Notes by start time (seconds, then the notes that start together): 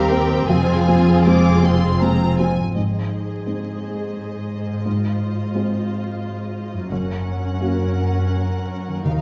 Already playing: D#2 D#3 G3 C4 G4 A#4 C5 F5
0.00 C4
0.09 C4 A#4 G5
0.24 G3
0.48 F1 F2 F3 F4 G#4 G#5
0.74 G#3
0.88 C4 F4
0.99 C4
1.24 G#3 C4 F4 D6
1.50 G#4
1.63 C4 F4 C6
1.76 C5
2.00 G#3 C4 F4 A#5
2.26 C4
2.39 C4 F4 G#5
2.51 G#3
2.57 G#2
2.62 G#3
2.66 C4
2.71 D#4
2.75 G#1 G#2 G#4 C5 D#5
3.46 G#3 C4 D#4
4.67 G#2
4.72 G#3
4.76 C4
4.80 F4
4.85 G#2 F4
5.55 G#3 C4 F4
6.73 F#2
6.78 A#3
6.83 C#4
6.87 F#1 F#4
6.91 F#2 C#4 A#4 F#5
7.60 A#3 C#4 F#4
8.88 D#3
8.92 A#3
8.97 D#4
9.02 D#2 D#4 F4
9.06 D#2 F5